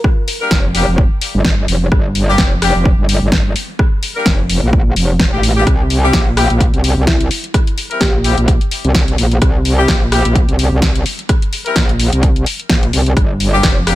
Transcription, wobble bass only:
0.51 F1
0.88 F1
1.35 G1
1.68 F1
1.92 G1
2.39 F1
2.75 F1
2.99 G1
3.22 G1
4.26 F1
4.63 A#1
4.96 F1
5.33 A1
5.67 C2
6.14 A#1
6.50 A#1
6.74 C2
6.97 C2
8.01 A#1
8.38 A#1
8.85 C2
9.18 A#1
9.42 C2
9.89 A#1
10.25 A#1
10.48 C2
10.72 C2
11.76 A#1
12.13 C2
12.70 A#1
12.93 C2
13.17 G1
13.64 F1

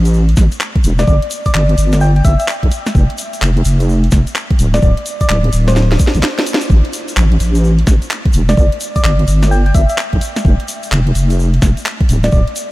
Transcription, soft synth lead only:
0.99 D5
1.07 D5
1.46 D5
1.54 D5
2.01 G5
2.16 G5
2.25 E5
2.40 E5
4.74 D5
4.83 D5
5.21 D5
5.29 D5
5.68 C5
5.76 C5
8.49 D5
8.57 D5
8.96 D5
9.04 D5
9.51 G5
9.66 G5
9.75 E5
9.90 E5
12.24 D5
12.32 D5

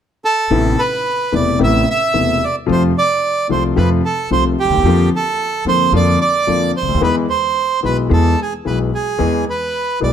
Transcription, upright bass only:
0.50 A1
1.33 E1
1.61 A1
2.14 E1
2.69 F2
3.50 C2
3.77 F2
4.31 C2
4.65 D2
4.70 D#2
4.77 E2
4.84 F2
5.65 F2
5.93 F2
6.48 F2
6.82 C#2
6.88 D2
6.95 D#2
7.02 E2
7.84 B1
8.11 E2
8.66 B1
9.20 E2
10.02 B1

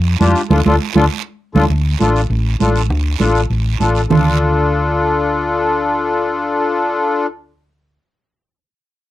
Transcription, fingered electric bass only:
Already playing: F2
0.21 F2
0.50 D2
0.65 D2
0.95 D2
1.55 D2
1.70 D2
2.00 A1
2.30 A1
2.60 A1
2.90 D2
3.20 A1
3.50 A1
3.80 A1
4.10 D2

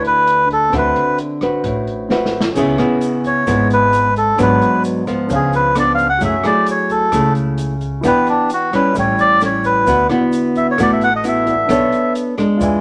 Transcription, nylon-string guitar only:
Already playing: D3 D4 E4 B4
0.73 D3 C4 F#4 B4
1.42 C4 F#4 B4
1.65 A2
2.10 C4 F#4 B4
2.56 C#3 B3 E4 G#4
2.79 B3 E4 G#4
3.47 G#2 B3 E4 G#4
4.38 G#2 F#3 B3 D4
5.07 F3 B3
5.30 C#3
5.76 F3 B3 D4
6.21 F#3 A3 E4 G#4
6.45 A3 E4 G#4
7.12 C#3 A3 E4 G#4
8.04 E3 B3 D4 G4
8.73 G3 C#4 E4
8.96 A2
9.42 G3 C#4 E4
9.87 D3 B3 E4 F#4
10.10 B3 E4 F#4
10.79 A3 B3 E4 F#4
11.24 B3 E4 F#4
11.69 B3 D4 A4 C#5
12.38 G#3 D4
12.61 E3

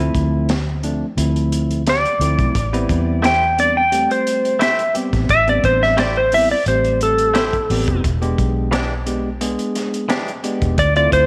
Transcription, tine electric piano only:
0.00 F3 A3 C4 E4
0.83 F3 A3 C4 D4
1.17 F3 A3 C4 E4
2.21 F3 A3 C4 E4
2.73 G3 B3 C4 E4
3.58 G3 B3 C4 D4
3.92 G3 A3 C4 G4
4.95 G3 B3 C4 G4
5.47 G3 B3 C4 D4
6.33 G3 B3 C4 E4
6.68 G3 A3 C4 G4
7.70 G3 B3 C4 G4
8.22 G#3 B3 D4 G4
9.06 G#3 B3 D4 G4
9.41 G#3 B3 D4 G#4
10.44 G#3 B3 D4 G4
10.96 A3 C4 E4 F4

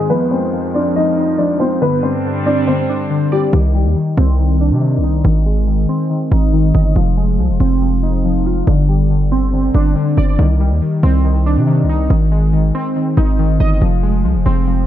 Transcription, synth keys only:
Already playing: D#3 G#3 C4 D#4 D#5
0.11 F3
0.32 G#3
0.53 F3
0.74 C4
0.96 F3
1.17 D#4
1.39 F3
1.60 F4
1.82 D3
2.03 G3
2.25 D3
2.46 C4
2.67 D3
2.89 D4
3.10 D3
3.32 D5
3.53 D#3
3.75 G3
3.96 D#3
4.18 C4
4.39 D#3
4.61 D4
4.81 D#3
5.03 D#4
5.25 D#3
5.46 G#3
5.67 D#3
5.89 C4
6.10 D#3
6.31 D#4
6.53 D#3
6.74 D#5
6.96 F3
7.17 G#3
7.39 F3
7.60 C4
7.82 F3
8.03 D#4
8.25 F3
8.46 F4
8.67 D3
8.89 G3
9.10 D3
9.32 C4
9.53 D3
9.75 D4
9.96 D3
10.18 D5
10.39 D#3
10.60 G3
10.82 D#3
11.03 C4
11.25 D#3
11.46 D4
11.67 D#3
11.89 D#4
12.10 D#3
12.32 G#3
12.53 D#3
12.75 C4
12.96 D#3
13.17 D#4
13.39 D#3
13.60 D#5
13.82 F3
14.03 G#3
14.25 F3
14.46 C4
14.67 F3

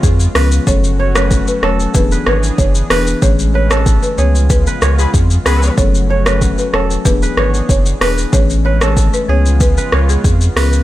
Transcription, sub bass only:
0.03 F2
0.35 C#2
0.67 F#1
1.63 E1
1.95 E1
2.27 G#1
2.58 F#1
2.90 E1
3.22 A1
4.18 C#2
4.82 C#2
5.14 F2
5.46 C#2
5.78 F#1
6.74 E1
7.05 E1
7.37 G#1
7.69 F#1
8.01 E1
8.33 A1
9.29 C#2
9.93 C#2
10.24 F2
10.56 C#2

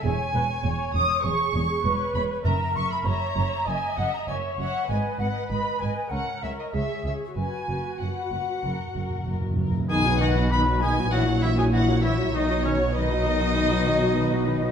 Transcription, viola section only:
0.03 G#4
0.33 B4
0.64 C#5
1.24 G#4
1.84 B4
2.45 A#4
3.05 C#5
3.67 D#5
4.29 C#5
4.90 B4
6.12 A#4
6.74 G#4
7.37 F#4
9.89 D#3 D#4
10.04 F#3 F#4
10.19 D#3 D#4
10.35 F#3 F#4
10.51 D#3 D#4
10.66 F#3 F#4
10.81 D#3 D#4
10.97 F#3 F#4
11.11 E3 E4
11.26 F#3 F#4
11.41 E3 E4
11.57 F#3 F#4
11.73 E3 E4
11.88 F#3 F#4
12.03 E3 E4
12.18 F#3 F#4
12.33 D#3 D#4
12.48 F#3 F#4
12.64 D#3 D#4
12.79 F#3 F#4
12.94 D#3 D#4
13.10 F#3 F#4
13.25 D#3 D#4
13.40 F#3 F#4
13.55 D#3 D#4
13.71 F#3 F#4
13.86 D#3 D#4
14.02 F#3 F#4
14.17 D#3 D#4
14.31 F#3 F#4
14.47 D#3 D#4
14.62 F#3 F#4

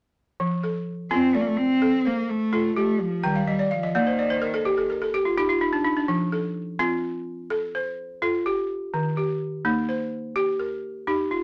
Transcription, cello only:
1.11 C4
1.35 A3
1.41 A#3
1.47 A3
1.57 C4
2.06 A#3
2.29 A3
2.77 A3
3.01 F3
3.25 G3
3.49 G3
3.66 G3
3.72 F3
3.97 D#3

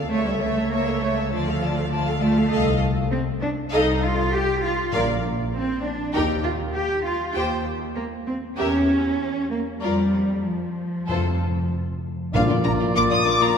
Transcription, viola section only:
Already playing: A4
0.11 C#5
0.25 A4
0.40 C#5
0.55 A4
0.70 C#5
0.86 A4
1.01 C#5
1.16 A4
1.31 F4
1.47 A4
1.61 F4
1.77 A4
1.92 F4
2.07 A4
2.22 F4
2.37 A4
2.52 A4
3.72 A4
4.92 A#4
6.14 G4
7.35 G4
8.56 G4
9.82 F4
11.09 F4

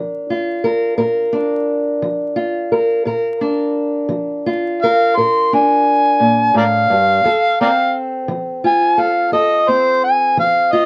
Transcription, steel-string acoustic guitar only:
Already playing: F3 D4 A#4
0.30 F4
0.64 A#4
0.97 A#2 A#4
1.32 D4
2.02 F3
2.36 F4
2.72 A#4
3.06 A#2 A#4
3.41 D4
4.09 F3
4.46 F4
4.84 A#4
5.17 A#2 A#4
5.53 D4
6.20 A#2
6.54 A2
6.90 G2
7.24 F2 A4
7.61 C4
8.28 F3
8.64 F4
8.97 A4
9.32 F2 A4
9.68 C4
10.37 F3
10.73 F4

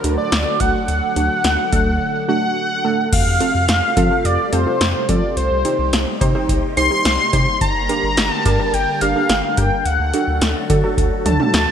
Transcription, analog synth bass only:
0.04 D2
0.32 D2
0.60 C2
0.88 D2
1.16 D2
1.44 D2
1.73 D2
1.86 D2
3.13 F2
3.26 F2
3.55 F2
3.69 F2
3.97 F3
4.25 F2
4.53 F2
4.81 F2
5.09 F3
5.37 C2
5.51 C2
5.79 C2
5.93 C2
6.21 C3
6.49 C2
6.77 C2
7.05 C2
7.33 C3
7.61 G1
7.75 G1
8.03 G1
8.17 G1
8.46 G2
8.74 G1
9.02 G1
9.29 G1
9.58 G2
9.86 D2
10.00 D2
10.28 D2
10.42 D2
10.70 D3
10.98 D2
11.26 D2
11.54 D2

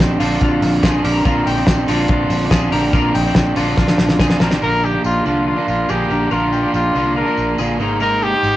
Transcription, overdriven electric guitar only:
Already playing: F3 C4 D4
0.20 D3 F3 C4 D4
0.83 D3 F3 C4 D4
1.04 D3 F3 C4 D4
1.25 A#2 D3 F3 C4 D4
1.56 F3 C4 D4
1.87 D3 F3 C4 D4
2.50 D3 F3 C4 D4
2.71 D3 F3 C4 D4
2.93 A#2 D3 F3 C4 D4
3.25 F3 C4 D4
3.56 D3 F3 C4 D4
4.19 D3 F3 C4 D4
4.40 D3 F3 C4 D4
4.62 A#2 D3 F3 A#3 D4
4.93 F3 A#3 D4
5.25 D3 F3 A#3 D4
5.56 F3 A#3 D4
5.88 D3 F3 A#3 D4
6.09 D3 F3 A#3 D4
6.31 A#2 D3 F3 A#3 D4
6.62 F3 A#3 D4
6.94 D3 F3 A#3 D4
7.26 F3 A#3 D4
7.58 D3 F3 A#3 D4
7.80 A#3 D#4 G#4 C5
8.01 G#3 A#3 D#4 G#4 C5
8.32 D#4 C5

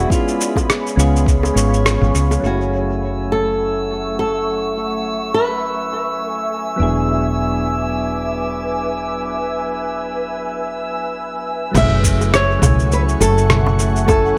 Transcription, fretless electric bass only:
0.97 C#2
1.56 G#1
2.01 G#1
2.15 C#2
2.43 F#1
6.80 E1
11.75 F#1
12.62 C#2
13.20 F#1

